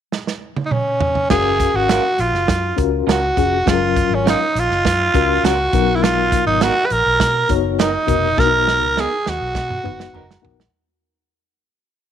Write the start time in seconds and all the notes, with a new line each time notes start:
0.12 snare
0.27 snare
0.57 high tom
0.66 D#4
0.71 C#4, mid tom
1.01 floor tom
1.15 floor tom
1.30 F#1 C#4 F#4 G#4 A#4 F5, kick, snare, crash
1.60 kick, closed hi-hat
1.74 G#1 F#4
1.89 C#4 F4 A#4, snare, closed hi-hat
2.18 A#1 F4, closed hi-hat
2.33 F#1, snare
2.48 F#2, kick, snare, closed hi-hat
2.77 C#2 C#4 F4 F#4 A#4, kick, closed hi-hat
3.07 C#2 C#4 F4 A#4, snare, closed hi-hat
3.11 F#4
3.37 F1 C#4 F4 F#4 G#4, kick, closed hi-hat
3.66 F#1 F#3 C#4 F4 G#4, kick, snare, closed hi-hat
3.73 A#4
3.96 kick, closed hi-hat
4.10 G#1
4.14 C#4
4.26 C#4 D#4 F4 A#4, snare, closed hi-hat
4.55 A#1 F4, closed hi-hat
4.70 F#1, snare
4.85 F#2, kick, snare, closed hi-hat
5.14 C#2 C#4 F4 F#4 A#4, kick, closed hi-hat
5.43 C#2 C#4 F4 F#4 A#4, snare, closed hi-hat
5.73 B1 B2 F#3 B3 D#4 A#4, kick, closed hi-hat
5.96 E4
6.03 F4, snare, closed hi-hat
6.32 kick, closed hi-hat
6.46 G#1 D#4
6.61 B3 D#4 F#4 A#4, snare, closed hi-hat
6.85 B4
6.90 A#1 A#4, closed hi-hat
7.06 B1
7.20 B2, kick, snare, closed hi-hat
7.49 F#1 B3 D#4 F#4 C#5, kick, closed hi-hat
7.79 B3 D#4 A#4, snare, closed hi-hat
8.06 F1 B2 B3 D#4 F#4 A#4, kick, closed hi-hat
8.37 B1 B3 D4 F#4 A#4, kick, snare
8.44 D#4
8.68 snare
8.82 C#2
8.97 B3 D#4 G#4 A#4, snare
9.26 D#2 F#4, snare
9.41 B1
9.55 B2, kick, snare
9.70 mid tom
9.83 F#1 B3 D#4 F#4 B4, mid tom
10.00 snare
10.13 F#1 B3 D#4 A#4 A#5, floor tom
10.31 snare
10.42 A#1 B3 D#4 F#4 A#4 F#5, floor tom
10.60 snare